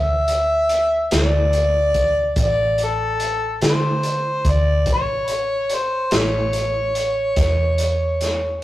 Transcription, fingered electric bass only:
0.00 1.08 D2 medium
1.12 2.34 D2 medium
2.36 3.58 A1 medium
3.62 4.42 D3 medium
4.45 4.87 D2 medium
4.87 6.08 A1 medium
6.13 7.34 A1 medium
7.37 8.59 E2 medium

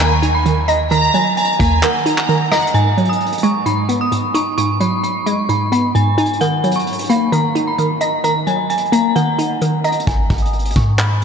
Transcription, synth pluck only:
0.00 0.45 D#3 medium
0.00 0.46 F#3 medium
0.00 0.91 A#3 medium
0.22 1.37 D#4 medium
0.46 0.90 D#3 medium
0.68 1.83 D#5 medium
0.91 1.82 D#3 medium
1.14 2.29 F#3 medium
1.60 2.74 A#3 medium
1.83 2.28 D#3 medium
2.06 2.74 D#4 medium
2.29 2.75 D#3 medium
2.52 2.74 D#5 medium
2.74 3.65 G#2 medium
2.97 4.12 F#3 medium
3.43 4.58 G#3 medium
3.66 4.11 G#2 medium
3.89 5.03 B3 medium
4.12 4.57 G#2 medium
4.34 5.49 D#4 medium
4.58 5.48 G#2 medium
4.81 5.95 F#3 medium
5.26 6.41 G#3 medium
5.49 5.94 G#2 medium
5.72 6.41 B3 medium
5.95 6.41 G#2 medium
6.18 6.41 D#4 medium
6.41 7.31 D#3 medium
6.64 7.78 F#3 medium
7.10 8.24 A#3 medium
7.32 7.77 D#3 medium
7.55 8.70 D#4 medium
7.78 8.23 D#3 medium
8.01 9.16 D#5 medium
8.24 9.15 D#3 medium
8.47 9.61 F#3 medium
8.92 10.07 A#3 medium
9.16 9.61 D#3 medium
9.39 10.07 D#4 medium
9.62 10.07 D#3 medium
9.84 10.07 D#5 medium

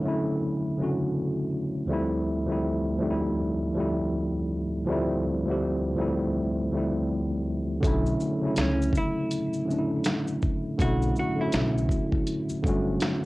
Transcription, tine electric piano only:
0.00 0.02 D3 medium
0.00 0.64 D3 medium
0.00 0.04 F#3 medium
0.00 0.65 F#3 medium
0.00 0.05 A3 medium
0.00 0.07 C#4 medium
0.00 0.08 E4 loud
0.05 0.65 A3 medium
0.05 0.66 C#4 medium
0.05 0.67 E4 medium
0.77 0.86 C#3 medium
0.77 1.66 F#3 medium
0.77 1.66 A3 medium
0.82 1.68 D3 medium
0.82 1.67 C#4 medium
0.82 1.68 F#4 medium
1.86 2.32 D2 medium
1.86 2.32 F3 medium
1.86 2.33 G3 medium
1.86 2.34 A3 medium
1.91 2.34 C4 medium
1.91 2.35 E4 loud
2.45 2.89 D2 medium
2.45 2.89 F3 medium
2.45 2.90 G3 medium
2.45 2.91 A3 medium
2.51 2.91 C4 medium
2.51 2.92 E4 medium
2.98 3.60 D2 medium
2.98 3.60 F3 medium
2.98 3.61 G3 medium
2.98 3.62 A3 medium
3.03 3.62 C4 medium
3.03 3.11 D#4 medium
3.11 3.66 E4 medium
3.74 4.62 D2 medium
3.74 4.62 F3 medium
3.74 4.63 G3 medium
3.74 4.63 A3 medium
3.79 4.64 C4 medium
3.79 4.65 E4 medium
4.85 5.29 D2 medium
4.85 5.30 F3 medium
4.85 5.31 G3 medium
4.89 5.31 A3 medium
4.89 5.32 C4 medium
4.89 5.33 E4 medium
5.45 5.87 D2 medium
5.45 5.87 F3 medium
5.45 5.88 G3 medium
5.49 5.89 A3 medium
5.49 5.89 C4 medium
5.49 5.90 G4 medium
5.95 6.56 D2 medium
5.95 6.57 F3 medium
5.95 6.58 G3 medium
5.95 6.58 A3 medium
6.00 6.59 C4 medium
6.00 6.60 E4 medium
6.71 7.58 D2 medium
6.71 7.59 F3 medium
6.71 7.59 G3 medium
6.71 7.60 A3 medium
6.76 7.61 C4 medium
6.76 7.61 E4 medium
7.80 8.25 D3 loud
7.80 8.26 F#3 medium
7.80 8.27 A3 medium
7.86 8.28 C#4 medium
7.86 8.28 E4 loud
8.40 9.37 C#3 medium
8.40 9.38 F#3 medium
8.40 9.39 A3 medium
8.45 9.40 C#4 medium
8.45 9.41 E4 medium
9.65 10.54 D3 medium
9.65 10.54 F#3 medium
9.65 10.55 A3 medium
9.70 10.56 C#4 medium
9.70 9.78 D4 medium
9.78 10.60 E4 medium
10.78 11.22 D3 medium
10.78 11.23 F#3 medium
10.78 11.23 A3 medium
10.83 11.24 C#4 medium
10.83 11.25 E4 loud
11.36 12.33 D3 medium
11.36 12.34 F#3 medium
11.36 12.35 A3 medium
11.41 12.36 C#4 medium
11.41 12.37 F#4 medium
12.62 13.24 D3 medium
12.62 13.25 F#3 medium
12.62 13.25 A3 medium
12.68 13.25 C#4 medium
12.68 13.25 F#4 medium

